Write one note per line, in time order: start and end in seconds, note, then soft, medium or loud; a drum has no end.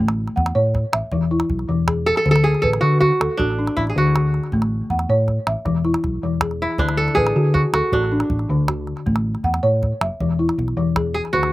0.00 0.27 A1 medium
0.00 0.36 A3 medium
0.00 0.53 D4 medium
0.00 0.12 F#4 medium
0.00 0.17 F#4 medium
0.08 calabash click medium
0.28 calabash click soft
0.36 0.51 E2 medium
0.36 0.93 F#5 medium
0.36 calabash thump medium
0.46 calabash click medium
0.55 0.84 A2 medium
0.55 0.93 C#5 medium
0.75 calabash thump medium
0.93 1.00 A1 medium
0.93 1.30 E5 medium
0.93 calabash click medium
1.12 1.41 E1 loud
1.12 1.50 E3 medium
1.12 calabash thump medium
1.31 1.88 E4 medium
1.40 calabash click medium
1.50 1.64 B1 medium
1.50 calabash thump medium
1.59 calabash click soft
1.69 2.11 E1 medium
1.69 2.06 E3 medium
1.88 2.44 G#4 medium
1.88 calabash thump medium
1.88 calabash click medium
2.06 2.17 A4 medium
2.06 calabash click soft
2.16 2.31 A4 medium
2.16 calabash click soft
2.26 2.54 D2 medium
2.26 2.63 D3 medium
2.26 calabash thump medium
2.31 2.50 A4 loud
2.36 calabash click soft
2.44 2.68 G#4 medium
2.55 calabash click soft
2.62 2.78 A1 medium
2.62 2.68 A4 medium
2.62 3.20 B4 medium
2.62 calabash thump medium
2.73 calabash click soft
2.81 3.10 D3 medium
2.81 3.00 F#4 medium
2.81 3.20 F#4 medium
3.01 3.97 F#4 medium
3.01 calabash thump medium
3.20 3.27 D2 medium
3.20 3.77 A4 medium
3.20 calabash click medium
3.37 3.68 A1 loud
3.37 5.05 D4 medium
3.37 3.77 F#4 medium
3.37 calabash thump medium
3.59 4.15 D4 medium
3.67 calabash click soft
3.77 3.91 A1 medium
3.77 3.83 E4 medium
3.77 calabash thump soft
3.87 5.26 G#4 medium
3.87 calabash click soft
3.96 4.39 D2 medium
3.96 4.33 D3 medium
3.96 5.44 F#4 medium
4.15 4.71 F#4 medium
4.15 calabash thump medium
4.15 calabash click medium
4.34 calabash click soft
4.44 calabash click soft
4.52 4.81 A1 medium
4.52 4.91 A3 medium
4.52 calabash thump medium
4.62 calabash click soft
4.90 5.04 E2 medium
4.90 5.47 F#5 medium
4.90 calabash thump soft
4.90 calabash click soft
4.99 calabash click soft
5.09 5.38 A2 medium
5.09 5.47 C#5 medium
5.28 calabash thump medium
5.28 calabash click soft
5.47 5.54 A1 medium
5.47 5.85 E5 medium
5.47 calabash click medium
5.65 5.94 E1 medium
5.65 6.03 E3 medium
5.65 calabash thump medium
5.65 calabash click soft
5.85 6.41 E4 medium
5.85 calabash click soft
5.94 calabash click soft
6.03 6.18 B1 medium
6.03 calabash thump medium
6.03 calabash click soft
6.23 6.66 E1 medium
6.23 6.61 E3 medium
6.41 6.98 G#4 medium
6.41 calabash thump medium
6.41 calabash click medium
6.51 calabash click soft
6.62 8.19 E4 medium
6.78 7.08 D2 medium
6.78 7.17 D3 medium
6.78 7.93 D4 medium
6.78 calabash thump medium
6.89 calabash click soft
6.97 7.21 A4 medium
7.08 calabash click soft
7.15 7.31 A1 medium
7.15 8.51 G#4 loud
7.15 7.74 B4 medium
7.15 calabash thump medium
7.27 calabash click medium
7.36 7.65 D3 medium
7.36 7.74 F#4 medium
7.54 7.60 F#4 medium
7.54 calabash thump medium
7.73 7.80 D2 medium
7.73 9.20 F#4 medium
7.73 8.31 A4 medium
7.73 calabash click medium
7.92 8.21 A1 loud
7.92 9.61 D4 medium
7.92 8.31 F#4 medium
7.92 calabash thump medium
8.12 8.69 D4 medium
8.20 calabash click soft
8.30 8.44 A1 medium
8.30 calabash thump medium
8.39 calabash click soft
8.49 8.92 D2 medium
8.49 8.88 D3 medium
8.68 9.25 F#4 medium
8.68 calabash thump medium
8.68 calabash click medium
8.87 calabash click soft
8.97 calabash click soft
9.06 9.35 A1 medium
9.06 9.44 A3 medium
9.06 calabash thump medium
9.16 calabash click soft
9.35 calabash click soft
9.44 9.58 E2 medium
9.44 10.01 F#5 medium
9.44 calabash thump medium
9.54 calabash click soft
9.63 9.92 A2 medium
9.63 10.01 C#5 medium
9.83 calabash thump medium
10.01 10.08 F#1 medium
10.01 10.39 E5 medium
10.01 calabash click medium
10.20 10.49 E1 loud
10.20 10.58 E3 medium
10.20 calabash thump medium
10.39 10.96 E4 medium
10.49 calabash click soft
10.58 10.72 B1 medium
10.58 calabash thump medium
10.68 calabash click soft
10.77 11.19 E1 medium
10.77 11.15 E3 medium
10.96 11.53 G#4 medium
10.96 calabash thump medium
10.96 calabash click medium
11.14 11.20 G#4 medium
11.14 calabash click soft
11.25 calabash click soft
11.33 11.53 D2 medium
11.33 11.53 D3 medium
11.33 11.53 F#4 medium
11.33 calabash thump medium
11.43 calabash click soft